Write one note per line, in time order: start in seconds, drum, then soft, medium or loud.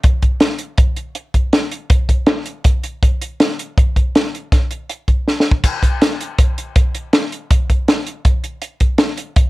0.03 kick loud
0.03 closed hi-hat medium
0.22 kick medium
0.22 closed hi-hat medium
0.40 snare medium
0.40 closed hi-hat medium
0.59 closed hi-hat medium
0.78 kick loud
0.78 closed hi-hat medium
0.97 closed hi-hat medium
1.15 closed hi-hat medium
1.34 kick medium
1.34 closed hi-hat medium
1.53 snare medium
1.53 closed hi-hat medium
1.71 closed hi-hat medium
1.90 kick loud
1.90 closed hi-hat medium
2.09 kick medium
2.09 closed hi-hat medium
2.27 snare loud
2.27 closed hi-hat medium
2.46 closed hi-hat medium
2.64 kick loud
2.64 closed hi-hat medium
2.83 closed hi-hat medium
3.03 kick medium
3.03 closed hi-hat medium
3.21 closed hi-hat medium
3.40 snare loud
3.40 closed hi-hat medium
3.59 closed hi-hat medium
3.78 kick loud
3.78 closed hi-hat medium
3.96 kick medium
3.96 closed hi-hat medium
4.15 snare medium
4.15 closed hi-hat medium
4.35 closed hi-hat medium
4.52 kick medium
4.52 snare soft
4.52 closed hi-hat medium
4.71 closed hi-hat medium
4.89 closed hi-hat medium
5.08 kick medium
5.08 closed hi-hat medium
5.27 snare soft
5.40 snare medium
5.51 kick medium
5.64 kick medium
5.64 closed hi-hat medium
5.64 crash medium
5.82 kick medium
5.82 closed hi-hat medium
6.01 snare loud
6.01 closed hi-hat medium
6.20 closed hi-hat medium
6.38 kick loud
6.38 closed hi-hat medium
6.58 closed hi-hat medium
6.76 kick loud
6.76 closed hi-hat medium
6.95 closed hi-hat medium
7.13 snare loud
7.13 closed hi-hat medium
7.32 closed hi-hat medium
7.51 kick loud
7.51 closed hi-hat medium
7.70 kick medium
7.70 closed hi-hat medium
7.88 snare medium
7.88 closed hi-hat medium
8.07 closed hi-hat medium
8.25 kick loud
8.25 closed hi-hat medium
8.44 closed hi-hat medium
8.62 closed hi-hat medium
8.80 kick medium
8.80 closed hi-hat medium
8.98 snare loud
8.98 closed hi-hat medium
9.17 closed hi-hat medium
9.36 kick loud
9.36 closed hi-hat medium